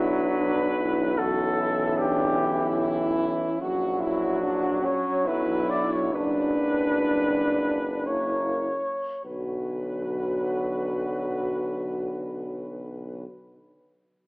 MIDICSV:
0, 0, Header, 1, 6, 480
1, 0, Start_track
1, 0, Key_signature, 2, "minor"
1, 0, Tempo, 808625
1, 693, Time_signature, 3, 2, 24, 8
1, 2610, Tempo, 858369
1, 3570, Tempo, 927357
1, 4050, Tempo, 1023891
1, 4530, Tempo, 1171875
1, 5010, Tempo, 1077199
1, 7254, End_track
2, 0, Start_track
2, 0, Title_t, "Flugelhorn"
2, 0, Program_c, 0, 56
2, 0, Note_on_c, 0, 71, 92
2, 698, Note_on_c, 0, 69, 85
2, 707, Note_off_c, 0, 71, 0
2, 1175, Note_on_c, 0, 67, 80
2, 1184, Note_off_c, 0, 69, 0
2, 1890, Note_off_c, 0, 67, 0
2, 2374, Note_on_c, 0, 66, 86
2, 2861, Note_on_c, 0, 73, 86
2, 2869, Note_off_c, 0, 66, 0
2, 3096, Note_on_c, 0, 71, 83
2, 3104, Note_off_c, 0, 73, 0
2, 3336, Note_on_c, 0, 74, 81
2, 3345, Note_off_c, 0, 71, 0
2, 3465, Note_on_c, 0, 73, 77
2, 3474, Note_off_c, 0, 74, 0
2, 3580, Note_off_c, 0, 73, 0
2, 3583, Note_on_c, 0, 71, 93
2, 4530, Note_on_c, 0, 73, 69
2, 4536, Note_off_c, 0, 71, 0
2, 5011, Note_off_c, 0, 73, 0
2, 5017, Note_on_c, 0, 71, 59
2, 6797, Note_off_c, 0, 71, 0
2, 7254, End_track
3, 0, Start_track
3, 0, Title_t, "French horn section"
3, 0, Program_c, 1, 60
3, 0, Note_on_c, 1, 64, 86
3, 197, Note_off_c, 1, 64, 0
3, 228, Note_on_c, 1, 62, 60
3, 460, Note_off_c, 1, 62, 0
3, 465, Note_on_c, 1, 64, 67
3, 697, Note_off_c, 1, 64, 0
3, 701, Note_on_c, 1, 66, 72
3, 935, Note_off_c, 1, 66, 0
3, 945, Note_on_c, 1, 64, 69
3, 1176, Note_off_c, 1, 64, 0
3, 1176, Note_on_c, 1, 62, 65
3, 1410, Note_off_c, 1, 62, 0
3, 1423, Note_on_c, 1, 64, 79
3, 2135, Note_off_c, 1, 64, 0
3, 2136, Note_on_c, 1, 66, 75
3, 2371, Note_off_c, 1, 66, 0
3, 2372, Note_on_c, 1, 64, 76
3, 2614, Note_off_c, 1, 64, 0
3, 2625, Note_on_c, 1, 62, 76
3, 2843, Note_on_c, 1, 61, 67
3, 2847, Note_off_c, 1, 62, 0
3, 3075, Note_off_c, 1, 61, 0
3, 3087, Note_on_c, 1, 64, 83
3, 3574, Note_off_c, 1, 64, 0
3, 3583, Note_on_c, 1, 62, 66
3, 4536, Note_off_c, 1, 62, 0
3, 4541, Note_on_c, 1, 58, 50
3, 4777, Note_off_c, 1, 58, 0
3, 5021, Note_on_c, 1, 66, 48
3, 6799, Note_off_c, 1, 66, 0
3, 7254, End_track
4, 0, Start_track
4, 0, Title_t, "Euphonium"
4, 0, Program_c, 2, 58
4, 0, Note_on_c, 2, 62, 70
4, 670, Note_off_c, 2, 62, 0
4, 690, Note_on_c, 2, 61, 63
4, 2901, Note_off_c, 2, 61, 0
4, 3080, Note_on_c, 2, 62, 68
4, 4530, Note_on_c, 2, 64, 49
4, 4536, Note_off_c, 2, 62, 0
4, 4833, Note_off_c, 2, 64, 0
4, 5010, Note_on_c, 2, 54, 48
4, 6794, Note_off_c, 2, 54, 0
4, 7254, End_track
5, 0, Start_track
5, 0, Title_t, "Trombone"
5, 0, Program_c, 3, 57
5, 0, Note_on_c, 3, 54, 70
5, 673, Note_off_c, 3, 54, 0
5, 701, Note_on_c, 3, 52, 68
5, 2139, Note_on_c, 3, 54, 71
5, 2147, Note_off_c, 3, 52, 0
5, 4368, Note_off_c, 3, 54, 0
5, 4539, Note_on_c, 3, 58, 50
5, 4821, Note_off_c, 3, 58, 0
5, 5019, Note_on_c, 3, 50, 47
5, 6798, Note_off_c, 3, 50, 0
5, 7254, End_track
6, 0, Start_track
6, 0, Title_t, "Tuba"
6, 0, Program_c, 4, 58
6, 0, Note_on_c, 4, 35, 64
6, 2104, Note_off_c, 4, 35, 0
6, 2133, Note_on_c, 4, 34, 60
6, 2912, Note_off_c, 4, 34, 0
6, 3086, Note_on_c, 4, 35, 59
6, 3573, Note_on_c, 4, 30, 60
6, 3580, Note_off_c, 4, 35, 0
6, 4834, Note_off_c, 4, 30, 0
6, 5014, Note_on_c, 4, 35, 45
6, 6796, Note_off_c, 4, 35, 0
6, 7254, End_track
0, 0, End_of_file